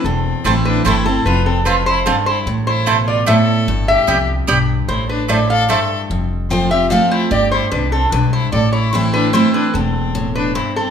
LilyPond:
<<
  \new Staff \with { instrumentName = "Resonator guitar played with a steel bar" } { \time 3/4 \key a \minor \tempo 4 = 148 a'4. b'8 c''8 a'8 | b'8 a'8 b'8 c''8 a'8 c''8 | r8 c''4 d''8 e''4~ | e''8 e''4 r4. |
c''8 b'8 d''8 f''8 e''8. r16 | r4 g''8 e''8 f''8 c''8 | d''8 c''8 b'8 a'8 b'8 c''8 | d''8 cis''8 c''8 b'8 c''8 b'8 |
a'4. b'8 c''8 a'8 | }
  \new Staff \with { instrumentName = "Mandolin" } { \time 3/4 \key a \minor r4 <a e' c'' a''>8 r8 <a e' c'' a''>8 r8 | r4 <c' f' c'' a''>8 r8 <c' f' c'' a''>8 r8 | r4 <a e' c'' a''>8 r8 <a e' c'' a''>8 r8 | r4 <b g' d'' g''>8 r8 <b g' d'' g''>8 r8 |
r4 <a e' c'' a''>8 r8 <a e' c'' a''>8 r8 | r2. | r2. | r2. |
r2. | }
  \new Staff \with { instrumentName = "Fiddle" } { \time 3/4 \key a \minor c'4. d'8 e'8 c'8 | f'8 c'8 f'8 e'8 c'8 e'8 | r8 e'4 f'8 a'4~ | a'8 g'4 r4. |
e'8 d'8 a'8 a'8 a'8. r16 | r4 c''8 g'8 a'8 e'8 | g'8 e'8 d'8 c'8 d'8 e'8 | a'8 e'8 e'8 d'8 e'8 d'8 |
c'4. d'8 e'8 c'8 | }
  \new Staff \with { instrumentName = "Steel-string acoustic guitar" } { \clef bass \time 3/4 \key a \minor << { r4 <e a c' e'>4 <e a c' e'>8 <c' e'>8 | r2. | r2. | r2. |
r2. | r4 <f a c' f'>8 <c' f'>8 <f a c' f'>4 | r2. | r4 <e a c' e'>4 <e a c' e'>4 |
r2. | } \\ { e,2 r4 | f,4 f,4 g,4 | a,4 b,4 a,4 | g,4 f,4 g,4 |
a,4 a,4 g,4 | f,2 r4 | g,4 f,4 g,4 | a,2 r4 |
e,4 a,4 g,4 | } >> }
  \new Staff \with { instrumentName = "Upright bass" } { \clef bass \time 3/4 \key a \minor e,,4 a,,4 g,,4 | f,,2. | a,,2. | g,,4 c,4 b,,4 |
a,,2. | f,,2. | g,,4 c,4 b,,4 | a,,2. |
e,,2. | }
>>